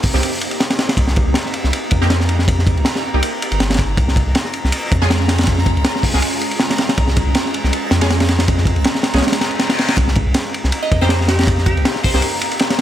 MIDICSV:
0, 0, Header, 1, 8, 480
1, 0, Start_track
1, 0, Tempo, 375000
1, 1249, Time_signature, 4, 2, 24, 8
1, 16402, End_track
2, 0, Start_track
2, 0, Title_t, "Synth texture"
2, 0, Program_c, 0, 99
2, 0, Note_on_c, 0, 82, 92
2, 12751, Note_off_c, 0, 82, 0
2, 12766, Note_on_c, 0, 82, 89
2, 16402, Note_off_c, 0, 82, 0
2, 16402, End_track
3, 0, Start_track
3, 0, Title_t, "Synth pluck"
3, 0, Program_c, 1, 84
3, 13858, Note_on_c, 1, 75, 92
3, 14073, Note_off_c, 1, 75, 0
3, 14098, Note_on_c, 1, 72, 94
3, 14426, Note_off_c, 1, 72, 0
3, 14447, Note_on_c, 1, 67, 92
3, 14907, Note_off_c, 1, 67, 0
3, 14925, Note_on_c, 1, 67, 99
3, 15220, Note_off_c, 1, 67, 0
3, 15405, Note_on_c, 1, 72, 93
3, 15492, Note_off_c, 1, 72, 0
3, 15540, Note_on_c, 1, 72, 79
3, 15610, Note_off_c, 1, 72, 0
3, 16402, End_track
4, 0, Start_track
4, 0, Title_t, "Ambient pad"
4, 0, Program_c, 2, 92
4, 0, Note_on_c, 2, 58, 81
4, 0, Note_on_c, 2, 60, 74
4, 0, Note_on_c, 2, 63, 76
4, 0, Note_on_c, 2, 67, 95
4, 5038, Note_off_c, 2, 58, 0
4, 5038, Note_off_c, 2, 60, 0
4, 5038, Note_off_c, 2, 63, 0
4, 5039, Note_off_c, 2, 67, 0
4, 5089, Note_on_c, 2, 61, 79
4, 5090, Note_on_c, 2, 56, 81
4, 5090, Note_on_c, 2, 68, 89
4, 5091, Note_on_c, 2, 65, 78
4, 12718, Note_off_c, 2, 61, 0
4, 12718, Note_off_c, 2, 68, 0
4, 12719, Note_off_c, 2, 56, 0
4, 12719, Note_off_c, 2, 65, 0
4, 12770, Note_on_c, 2, 60, 78
4, 12771, Note_on_c, 2, 67, 89
4, 12772, Note_on_c, 2, 63, 76
4, 12773, Note_on_c, 2, 58, 80
4, 16402, Note_off_c, 2, 58, 0
4, 16402, Note_off_c, 2, 60, 0
4, 16402, Note_off_c, 2, 63, 0
4, 16402, Note_off_c, 2, 67, 0
4, 16402, End_track
5, 0, Start_track
5, 0, Title_t, "Synth stab"
5, 0, Program_c, 3, 62
5, 178, Note_on_c, 3, 58, 77
5, 178, Note_on_c, 3, 60, 75
5, 178, Note_on_c, 3, 63, 76
5, 178, Note_on_c, 3, 67, 92
5, 352, Note_off_c, 3, 58, 0
5, 352, Note_off_c, 3, 60, 0
5, 352, Note_off_c, 3, 63, 0
5, 352, Note_off_c, 3, 67, 0
5, 2580, Note_on_c, 3, 58, 101
5, 2580, Note_on_c, 3, 60, 89
5, 2580, Note_on_c, 3, 63, 88
5, 2580, Note_on_c, 3, 67, 111
5, 2681, Note_off_c, 3, 58, 0
5, 2681, Note_off_c, 3, 60, 0
5, 2681, Note_off_c, 3, 63, 0
5, 2681, Note_off_c, 3, 67, 0
5, 4019, Note_on_c, 3, 58, 80
5, 4020, Note_on_c, 3, 63, 75
5, 4020, Note_on_c, 3, 67, 92
5, 4021, Note_on_c, 3, 60, 75
5, 4193, Note_off_c, 3, 58, 0
5, 4193, Note_off_c, 3, 60, 0
5, 4193, Note_off_c, 3, 63, 0
5, 4193, Note_off_c, 3, 67, 0
5, 6420, Note_on_c, 3, 56, 97
5, 6420, Note_on_c, 3, 61, 93
5, 6420, Note_on_c, 3, 68, 103
5, 6421, Note_on_c, 3, 65, 89
5, 6521, Note_off_c, 3, 56, 0
5, 6521, Note_off_c, 3, 61, 0
5, 6521, Note_off_c, 3, 68, 0
5, 6522, Note_off_c, 3, 65, 0
5, 7858, Note_on_c, 3, 68, 89
5, 7859, Note_on_c, 3, 61, 72
5, 7859, Note_on_c, 3, 65, 71
5, 7860, Note_on_c, 3, 56, 81
5, 8032, Note_off_c, 3, 61, 0
5, 8032, Note_off_c, 3, 65, 0
5, 8032, Note_off_c, 3, 68, 0
5, 8033, Note_off_c, 3, 56, 0
5, 10259, Note_on_c, 3, 56, 97
5, 10260, Note_on_c, 3, 61, 93
5, 10260, Note_on_c, 3, 68, 110
5, 10261, Note_on_c, 3, 65, 86
5, 10361, Note_off_c, 3, 56, 0
5, 10361, Note_off_c, 3, 61, 0
5, 10361, Note_off_c, 3, 68, 0
5, 10362, Note_off_c, 3, 65, 0
5, 11699, Note_on_c, 3, 68, 89
5, 11700, Note_on_c, 3, 56, 80
5, 11700, Note_on_c, 3, 61, 75
5, 11701, Note_on_c, 3, 65, 72
5, 11872, Note_off_c, 3, 68, 0
5, 11873, Note_off_c, 3, 56, 0
5, 11873, Note_off_c, 3, 61, 0
5, 11873, Note_off_c, 3, 65, 0
5, 14101, Note_on_c, 3, 60, 86
5, 14102, Note_on_c, 3, 58, 97
5, 14102, Note_on_c, 3, 63, 92
5, 14102, Note_on_c, 3, 67, 105
5, 14202, Note_off_c, 3, 58, 0
5, 14202, Note_off_c, 3, 60, 0
5, 14202, Note_off_c, 3, 63, 0
5, 14202, Note_off_c, 3, 67, 0
5, 15540, Note_on_c, 3, 58, 83
5, 15541, Note_on_c, 3, 60, 72
5, 15541, Note_on_c, 3, 67, 86
5, 15542, Note_on_c, 3, 63, 70
5, 15713, Note_off_c, 3, 58, 0
5, 15713, Note_off_c, 3, 60, 0
5, 15713, Note_off_c, 3, 67, 0
5, 15714, Note_off_c, 3, 63, 0
5, 16402, End_track
6, 0, Start_track
6, 0, Title_t, "Sub bass"
6, 0, Program_c, 4, 38
6, 176, Note_on_c, 4, 36, 93
6, 276, Note_off_c, 4, 36, 0
6, 1241, Note_on_c, 4, 36, 102
6, 1596, Note_off_c, 4, 36, 0
6, 1622, Note_on_c, 4, 36, 105
6, 1719, Note_off_c, 4, 36, 0
6, 2100, Note_on_c, 4, 36, 98
6, 2198, Note_off_c, 4, 36, 0
6, 2454, Note_on_c, 4, 41, 89
6, 3539, Note_on_c, 4, 36, 99
6, 3559, Note_off_c, 4, 41, 0
6, 3638, Note_off_c, 4, 36, 0
6, 4018, Note_on_c, 4, 36, 94
6, 4117, Note_off_c, 4, 36, 0
6, 4499, Note_on_c, 4, 31, 80
6, 5071, Note_off_c, 4, 31, 0
6, 5087, Note_on_c, 4, 36, 97
6, 5439, Note_off_c, 4, 36, 0
6, 5460, Note_on_c, 4, 36, 98
6, 5558, Note_off_c, 4, 36, 0
6, 5941, Note_on_c, 4, 36, 97
6, 6039, Note_off_c, 4, 36, 0
6, 6294, Note_on_c, 4, 41, 87
6, 7377, Note_on_c, 4, 36, 103
6, 7397, Note_off_c, 4, 41, 0
6, 7477, Note_off_c, 4, 36, 0
6, 7861, Note_on_c, 4, 36, 94
6, 7959, Note_off_c, 4, 36, 0
6, 8932, Note_on_c, 4, 36, 105
6, 9281, Note_off_c, 4, 36, 0
6, 9300, Note_on_c, 4, 36, 94
6, 9398, Note_off_c, 4, 36, 0
6, 9779, Note_on_c, 4, 36, 95
6, 9878, Note_off_c, 4, 36, 0
6, 10125, Note_on_c, 4, 41, 91
6, 11219, Note_on_c, 4, 36, 101
6, 11239, Note_off_c, 4, 41, 0
6, 11318, Note_off_c, 4, 36, 0
6, 11698, Note_on_c, 4, 36, 97
6, 11797, Note_off_c, 4, 36, 0
6, 12762, Note_on_c, 4, 36, 105
6, 13116, Note_off_c, 4, 36, 0
6, 13141, Note_on_c, 4, 36, 99
6, 13239, Note_off_c, 4, 36, 0
6, 13621, Note_on_c, 4, 36, 96
6, 13719, Note_off_c, 4, 36, 0
6, 13973, Note_on_c, 4, 41, 86
6, 15060, Note_on_c, 4, 36, 100
6, 15079, Note_off_c, 4, 41, 0
6, 15158, Note_off_c, 4, 36, 0
6, 15541, Note_on_c, 4, 36, 95
6, 15639, Note_off_c, 4, 36, 0
6, 16402, End_track
7, 0, Start_track
7, 0, Title_t, "Reverse cymbal"
7, 0, Program_c, 5, 119
7, 11808, Note_on_c, 5, 60, 65
7, 12769, Note_off_c, 5, 60, 0
7, 16402, End_track
8, 0, Start_track
8, 0, Title_t, "Drums"
8, 38, Note_on_c, 9, 46, 70
8, 48, Note_on_c, 9, 36, 100
8, 166, Note_off_c, 9, 46, 0
8, 176, Note_off_c, 9, 36, 0
8, 179, Note_on_c, 9, 38, 51
8, 293, Note_on_c, 9, 51, 87
8, 307, Note_off_c, 9, 38, 0
8, 421, Note_off_c, 9, 51, 0
8, 529, Note_on_c, 9, 51, 70
8, 654, Note_off_c, 9, 51, 0
8, 654, Note_on_c, 9, 51, 45
8, 774, Note_off_c, 9, 51, 0
8, 774, Note_on_c, 9, 38, 98
8, 774, Note_on_c, 9, 51, 70
8, 901, Note_off_c, 9, 38, 0
8, 901, Note_off_c, 9, 51, 0
8, 901, Note_on_c, 9, 38, 101
8, 901, Note_on_c, 9, 51, 80
8, 1007, Note_off_c, 9, 38, 0
8, 1007, Note_off_c, 9, 51, 0
8, 1007, Note_on_c, 9, 38, 100
8, 1007, Note_on_c, 9, 51, 69
8, 1135, Note_off_c, 9, 38, 0
8, 1135, Note_off_c, 9, 51, 0
8, 1138, Note_on_c, 9, 38, 103
8, 1142, Note_on_c, 9, 51, 80
8, 1242, Note_on_c, 9, 36, 104
8, 1246, Note_off_c, 9, 51, 0
8, 1246, Note_on_c, 9, 51, 84
8, 1266, Note_off_c, 9, 38, 0
8, 1370, Note_off_c, 9, 36, 0
8, 1374, Note_off_c, 9, 51, 0
8, 1376, Note_on_c, 9, 38, 56
8, 1486, Note_on_c, 9, 51, 62
8, 1497, Note_on_c, 9, 36, 103
8, 1504, Note_off_c, 9, 38, 0
8, 1614, Note_off_c, 9, 51, 0
8, 1625, Note_off_c, 9, 36, 0
8, 1717, Note_on_c, 9, 38, 105
8, 1731, Note_on_c, 9, 51, 92
8, 1845, Note_off_c, 9, 38, 0
8, 1859, Note_off_c, 9, 51, 0
8, 1865, Note_on_c, 9, 38, 41
8, 1966, Note_on_c, 9, 51, 66
8, 1993, Note_off_c, 9, 38, 0
8, 2094, Note_off_c, 9, 51, 0
8, 2102, Note_on_c, 9, 38, 35
8, 2214, Note_on_c, 9, 51, 85
8, 2230, Note_off_c, 9, 38, 0
8, 2342, Note_off_c, 9, 51, 0
8, 2441, Note_on_c, 9, 51, 70
8, 2454, Note_on_c, 9, 36, 95
8, 2569, Note_off_c, 9, 51, 0
8, 2579, Note_on_c, 9, 38, 45
8, 2582, Note_off_c, 9, 36, 0
8, 2688, Note_off_c, 9, 38, 0
8, 2688, Note_on_c, 9, 38, 110
8, 2690, Note_on_c, 9, 51, 77
8, 2816, Note_off_c, 9, 38, 0
8, 2818, Note_off_c, 9, 51, 0
8, 2822, Note_on_c, 9, 38, 50
8, 2928, Note_on_c, 9, 51, 71
8, 2950, Note_off_c, 9, 38, 0
8, 3056, Note_off_c, 9, 51, 0
8, 3060, Note_on_c, 9, 38, 50
8, 3173, Note_on_c, 9, 36, 105
8, 3178, Note_on_c, 9, 51, 85
8, 3188, Note_off_c, 9, 38, 0
8, 3301, Note_off_c, 9, 36, 0
8, 3306, Note_off_c, 9, 51, 0
8, 3311, Note_on_c, 9, 38, 36
8, 3413, Note_on_c, 9, 36, 91
8, 3416, Note_on_c, 9, 51, 72
8, 3439, Note_off_c, 9, 38, 0
8, 3541, Note_off_c, 9, 36, 0
8, 3544, Note_off_c, 9, 51, 0
8, 3551, Note_on_c, 9, 51, 40
8, 3646, Note_on_c, 9, 38, 104
8, 3654, Note_off_c, 9, 51, 0
8, 3654, Note_on_c, 9, 51, 91
8, 3774, Note_off_c, 9, 38, 0
8, 3782, Note_off_c, 9, 51, 0
8, 3784, Note_on_c, 9, 38, 55
8, 3912, Note_off_c, 9, 38, 0
8, 4129, Note_on_c, 9, 51, 88
8, 4257, Note_off_c, 9, 51, 0
8, 4380, Note_on_c, 9, 51, 73
8, 4500, Note_off_c, 9, 51, 0
8, 4500, Note_on_c, 9, 51, 46
8, 4609, Note_off_c, 9, 51, 0
8, 4609, Note_on_c, 9, 51, 72
8, 4612, Note_on_c, 9, 38, 94
8, 4737, Note_off_c, 9, 51, 0
8, 4740, Note_off_c, 9, 38, 0
8, 4741, Note_on_c, 9, 38, 85
8, 4744, Note_on_c, 9, 51, 71
8, 4790, Note_off_c, 9, 51, 0
8, 4790, Note_on_c, 9, 51, 68
8, 4799, Note_off_c, 9, 38, 0
8, 4799, Note_on_c, 9, 38, 87
8, 4848, Note_on_c, 9, 36, 78
8, 4854, Note_off_c, 9, 51, 0
8, 4854, Note_on_c, 9, 51, 57
8, 4927, Note_off_c, 9, 38, 0
8, 4976, Note_off_c, 9, 36, 0
8, 4982, Note_off_c, 9, 51, 0
8, 5087, Note_on_c, 9, 36, 105
8, 5090, Note_on_c, 9, 51, 76
8, 5215, Note_off_c, 9, 36, 0
8, 5218, Note_off_c, 9, 51, 0
8, 5224, Note_on_c, 9, 38, 47
8, 5326, Note_on_c, 9, 36, 96
8, 5334, Note_on_c, 9, 51, 75
8, 5352, Note_off_c, 9, 38, 0
8, 5454, Note_off_c, 9, 36, 0
8, 5462, Note_off_c, 9, 51, 0
8, 5565, Note_on_c, 9, 51, 84
8, 5576, Note_on_c, 9, 38, 111
8, 5693, Note_off_c, 9, 51, 0
8, 5694, Note_off_c, 9, 38, 0
8, 5694, Note_on_c, 9, 38, 38
8, 5805, Note_on_c, 9, 51, 67
8, 5822, Note_off_c, 9, 38, 0
8, 5933, Note_off_c, 9, 51, 0
8, 5946, Note_on_c, 9, 38, 39
8, 6044, Note_on_c, 9, 51, 98
8, 6074, Note_off_c, 9, 38, 0
8, 6172, Note_off_c, 9, 51, 0
8, 6294, Note_on_c, 9, 36, 107
8, 6298, Note_on_c, 9, 51, 68
8, 6422, Note_off_c, 9, 36, 0
8, 6422, Note_on_c, 9, 38, 50
8, 6426, Note_off_c, 9, 51, 0
8, 6532, Note_off_c, 9, 38, 0
8, 6532, Note_on_c, 9, 38, 112
8, 6536, Note_on_c, 9, 51, 83
8, 6659, Note_off_c, 9, 38, 0
8, 6659, Note_on_c, 9, 38, 42
8, 6664, Note_off_c, 9, 51, 0
8, 6762, Note_off_c, 9, 38, 0
8, 6762, Note_on_c, 9, 38, 92
8, 6769, Note_on_c, 9, 51, 81
8, 6890, Note_off_c, 9, 38, 0
8, 6890, Note_off_c, 9, 51, 0
8, 6890, Note_on_c, 9, 51, 69
8, 6901, Note_on_c, 9, 38, 92
8, 6955, Note_off_c, 9, 51, 0
8, 6955, Note_on_c, 9, 51, 64
8, 6959, Note_off_c, 9, 38, 0
8, 6959, Note_on_c, 9, 38, 84
8, 6998, Note_off_c, 9, 51, 0
8, 6998, Note_on_c, 9, 51, 80
8, 7011, Note_on_c, 9, 36, 96
8, 7087, Note_off_c, 9, 38, 0
8, 7126, Note_off_c, 9, 51, 0
8, 7139, Note_off_c, 9, 36, 0
8, 7143, Note_on_c, 9, 38, 38
8, 7247, Note_on_c, 9, 36, 100
8, 7248, Note_on_c, 9, 51, 64
8, 7271, Note_off_c, 9, 38, 0
8, 7375, Note_off_c, 9, 36, 0
8, 7376, Note_off_c, 9, 51, 0
8, 7385, Note_on_c, 9, 51, 41
8, 7480, Note_off_c, 9, 51, 0
8, 7480, Note_on_c, 9, 51, 86
8, 7483, Note_on_c, 9, 38, 122
8, 7608, Note_off_c, 9, 51, 0
8, 7611, Note_off_c, 9, 38, 0
8, 7624, Note_on_c, 9, 38, 52
8, 7721, Note_on_c, 9, 36, 95
8, 7726, Note_on_c, 9, 46, 84
8, 7752, Note_off_c, 9, 38, 0
8, 7849, Note_off_c, 9, 36, 0
8, 7854, Note_off_c, 9, 46, 0
8, 7855, Note_on_c, 9, 38, 58
8, 7964, Note_on_c, 9, 51, 81
8, 7983, Note_off_c, 9, 38, 0
8, 8092, Note_off_c, 9, 51, 0
8, 8210, Note_on_c, 9, 51, 64
8, 8335, Note_off_c, 9, 51, 0
8, 8335, Note_on_c, 9, 51, 48
8, 8442, Note_on_c, 9, 38, 107
8, 8451, Note_off_c, 9, 51, 0
8, 8451, Note_on_c, 9, 51, 67
8, 8570, Note_off_c, 9, 38, 0
8, 8579, Note_off_c, 9, 51, 0
8, 8582, Note_on_c, 9, 38, 101
8, 8583, Note_on_c, 9, 51, 77
8, 8681, Note_off_c, 9, 51, 0
8, 8681, Note_on_c, 9, 51, 80
8, 8689, Note_off_c, 9, 38, 0
8, 8689, Note_on_c, 9, 38, 106
8, 8809, Note_off_c, 9, 51, 0
8, 8817, Note_off_c, 9, 38, 0
8, 8821, Note_on_c, 9, 38, 109
8, 8824, Note_on_c, 9, 51, 71
8, 8929, Note_off_c, 9, 51, 0
8, 8929, Note_on_c, 9, 51, 82
8, 8931, Note_on_c, 9, 36, 112
8, 8949, Note_off_c, 9, 38, 0
8, 9057, Note_off_c, 9, 51, 0
8, 9058, Note_on_c, 9, 38, 51
8, 9059, Note_off_c, 9, 36, 0
8, 9171, Note_on_c, 9, 51, 76
8, 9176, Note_on_c, 9, 36, 103
8, 9186, Note_off_c, 9, 38, 0
8, 9299, Note_off_c, 9, 51, 0
8, 9304, Note_off_c, 9, 36, 0
8, 9402, Note_on_c, 9, 51, 90
8, 9414, Note_on_c, 9, 38, 109
8, 9530, Note_off_c, 9, 51, 0
8, 9542, Note_off_c, 9, 38, 0
8, 9544, Note_on_c, 9, 38, 35
8, 9653, Note_on_c, 9, 51, 70
8, 9672, Note_off_c, 9, 38, 0
8, 9781, Note_off_c, 9, 51, 0
8, 9783, Note_on_c, 9, 38, 36
8, 9893, Note_on_c, 9, 51, 86
8, 9911, Note_off_c, 9, 38, 0
8, 10021, Note_off_c, 9, 51, 0
8, 10125, Note_on_c, 9, 38, 101
8, 10130, Note_on_c, 9, 51, 78
8, 10253, Note_off_c, 9, 38, 0
8, 10256, Note_off_c, 9, 51, 0
8, 10256, Note_on_c, 9, 51, 87
8, 10265, Note_on_c, 9, 38, 100
8, 10373, Note_off_c, 9, 51, 0
8, 10373, Note_on_c, 9, 51, 78
8, 10374, Note_off_c, 9, 38, 0
8, 10374, Note_on_c, 9, 38, 99
8, 10498, Note_off_c, 9, 51, 0
8, 10498, Note_on_c, 9, 51, 75
8, 10502, Note_off_c, 9, 38, 0
8, 10505, Note_on_c, 9, 38, 103
8, 10605, Note_off_c, 9, 51, 0
8, 10605, Note_on_c, 9, 51, 81
8, 10613, Note_off_c, 9, 38, 0
8, 10613, Note_on_c, 9, 38, 90
8, 10733, Note_off_c, 9, 51, 0
8, 10737, Note_off_c, 9, 38, 0
8, 10737, Note_on_c, 9, 38, 101
8, 10748, Note_on_c, 9, 51, 89
8, 10853, Note_off_c, 9, 51, 0
8, 10853, Note_on_c, 9, 51, 89
8, 10858, Note_on_c, 9, 36, 105
8, 10865, Note_off_c, 9, 38, 0
8, 10978, Note_on_c, 9, 38, 44
8, 10981, Note_off_c, 9, 51, 0
8, 10986, Note_off_c, 9, 36, 0
8, 11078, Note_on_c, 9, 36, 90
8, 11093, Note_on_c, 9, 51, 69
8, 11106, Note_off_c, 9, 38, 0
8, 11206, Note_off_c, 9, 36, 0
8, 11213, Note_off_c, 9, 51, 0
8, 11213, Note_on_c, 9, 51, 39
8, 11320, Note_off_c, 9, 51, 0
8, 11320, Note_on_c, 9, 51, 86
8, 11335, Note_on_c, 9, 38, 120
8, 11448, Note_off_c, 9, 51, 0
8, 11455, Note_off_c, 9, 38, 0
8, 11455, Note_on_c, 9, 38, 57
8, 11561, Note_off_c, 9, 38, 0
8, 11561, Note_on_c, 9, 38, 110
8, 11567, Note_on_c, 9, 51, 77
8, 11689, Note_off_c, 9, 38, 0
8, 11693, Note_off_c, 9, 51, 0
8, 11693, Note_on_c, 9, 51, 70
8, 11706, Note_on_c, 9, 38, 87
8, 11743, Note_off_c, 9, 38, 0
8, 11743, Note_on_c, 9, 38, 88
8, 11754, Note_off_c, 9, 51, 0
8, 11754, Note_on_c, 9, 51, 70
8, 11806, Note_off_c, 9, 38, 0
8, 11806, Note_off_c, 9, 51, 0
8, 11806, Note_on_c, 9, 38, 92
8, 11806, Note_on_c, 9, 51, 62
8, 11864, Note_off_c, 9, 38, 0
8, 11864, Note_on_c, 9, 38, 89
8, 11875, Note_off_c, 9, 51, 0
8, 11875, Note_on_c, 9, 51, 71
8, 11935, Note_off_c, 9, 38, 0
8, 11935, Note_on_c, 9, 38, 121
8, 11939, Note_off_c, 9, 51, 0
8, 11939, Note_on_c, 9, 51, 92
8, 12045, Note_off_c, 9, 38, 0
8, 12045, Note_on_c, 9, 38, 104
8, 12048, Note_off_c, 9, 51, 0
8, 12048, Note_on_c, 9, 51, 76
8, 12168, Note_off_c, 9, 51, 0
8, 12168, Note_on_c, 9, 51, 43
8, 12173, Note_off_c, 9, 38, 0
8, 12281, Note_off_c, 9, 51, 0
8, 12281, Note_on_c, 9, 38, 94
8, 12281, Note_on_c, 9, 51, 74
8, 12409, Note_off_c, 9, 38, 0
8, 12409, Note_off_c, 9, 51, 0
8, 12410, Note_on_c, 9, 38, 101
8, 12412, Note_on_c, 9, 51, 81
8, 12525, Note_off_c, 9, 51, 0
8, 12525, Note_on_c, 9, 51, 74
8, 12535, Note_off_c, 9, 38, 0
8, 12535, Note_on_c, 9, 38, 105
8, 12652, Note_off_c, 9, 51, 0
8, 12652, Note_on_c, 9, 51, 72
8, 12655, Note_off_c, 9, 38, 0
8, 12655, Note_on_c, 9, 38, 100
8, 12763, Note_on_c, 9, 36, 112
8, 12768, Note_off_c, 9, 51, 0
8, 12768, Note_on_c, 9, 51, 85
8, 12783, Note_off_c, 9, 38, 0
8, 12891, Note_off_c, 9, 36, 0
8, 12896, Note_off_c, 9, 51, 0
8, 12898, Note_on_c, 9, 38, 51
8, 12996, Note_on_c, 9, 51, 62
8, 13009, Note_on_c, 9, 36, 104
8, 13026, Note_off_c, 9, 38, 0
8, 13124, Note_off_c, 9, 51, 0
8, 13137, Note_off_c, 9, 36, 0
8, 13239, Note_on_c, 9, 51, 97
8, 13244, Note_on_c, 9, 38, 114
8, 13367, Note_off_c, 9, 51, 0
8, 13372, Note_off_c, 9, 38, 0
8, 13377, Note_on_c, 9, 38, 36
8, 13494, Note_on_c, 9, 51, 66
8, 13505, Note_off_c, 9, 38, 0
8, 13621, Note_on_c, 9, 38, 36
8, 13622, Note_off_c, 9, 51, 0
8, 13723, Note_on_c, 9, 51, 82
8, 13749, Note_off_c, 9, 38, 0
8, 13851, Note_off_c, 9, 51, 0
8, 13973, Note_on_c, 9, 36, 94
8, 13973, Note_on_c, 9, 51, 69
8, 14101, Note_off_c, 9, 36, 0
8, 14101, Note_off_c, 9, 51, 0
8, 14101, Note_on_c, 9, 38, 51
8, 14197, Note_off_c, 9, 38, 0
8, 14197, Note_on_c, 9, 38, 105
8, 14209, Note_on_c, 9, 51, 89
8, 14325, Note_off_c, 9, 38, 0
8, 14337, Note_off_c, 9, 51, 0
8, 14345, Note_on_c, 9, 38, 45
8, 14442, Note_off_c, 9, 38, 0
8, 14442, Note_on_c, 9, 38, 106
8, 14445, Note_on_c, 9, 51, 78
8, 14570, Note_off_c, 9, 38, 0
8, 14573, Note_off_c, 9, 51, 0
8, 14574, Note_on_c, 9, 51, 63
8, 14583, Note_on_c, 9, 38, 94
8, 14634, Note_off_c, 9, 51, 0
8, 14634, Note_on_c, 9, 51, 63
8, 14635, Note_off_c, 9, 38, 0
8, 14635, Note_on_c, 9, 38, 80
8, 14685, Note_on_c, 9, 36, 108
8, 14693, Note_off_c, 9, 51, 0
8, 14693, Note_on_c, 9, 51, 84
8, 14763, Note_off_c, 9, 38, 0
8, 14813, Note_off_c, 9, 36, 0
8, 14821, Note_off_c, 9, 51, 0
8, 14822, Note_on_c, 9, 38, 42
8, 14929, Note_on_c, 9, 36, 97
8, 14929, Note_on_c, 9, 51, 76
8, 14950, Note_off_c, 9, 38, 0
8, 15057, Note_off_c, 9, 36, 0
8, 15057, Note_off_c, 9, 51, 0
8, 15068, Note_on_c, 9, 51, 41
8, 15171, Note_off_c, 9, 51, 0
8, 15171, Note_on_c, 9, 38, 127
8, 15171, Note_on_c, 9, 51, 90
8, 15299, Note_off_c, 9, 38, 0
8, 15299, Note_off_c, 9, 51, 0
8, 15304, Note_on_c, 9, 38, 56
8, 15412, Note_on_c, 9, 46, 77
8, 15416, Note_on_c, 9, 36, 90
8, 15432, Note_off_c, 9, 38, 0
8, 15540, Note_off_c, 9, 46, 0
8, 15541, Note_on_c, 9, 38, 53
8, 15544, Note_off_c, 9, 36, 0
8, 15642, Note_on_c, 9, 51, 81
8, 15669, Note_off_c, 9, 38, 0
8, 15770, Note_off_c, 9, 51, 0
8, 15891, Note_on_c, 9, 51, 74
8, 16018, Note_off_c, 9, 51, 0
8, 16018, Note_on_c, 9, 51, 46
8, 16120, Note_off_c, 9, 51, 0
8, 16120, Note_on_c, 9, 51, 82
8, 16137, Note_on_c, 9, 38, 103
8, 16248, Note_off_c, 9, 51, 0
8, 16260, Note_on_c, 9, 51, 75
8, 16262, Note_off_c, 9, 38, 0
8, 16262, Note_on_c, 9, 38, 101
8, 16388, Note_off_c, 9, 51, 0
8, 16390, Note_off_c, 9, 38, 0
8, 16402, End_track
0, 0, End_of_file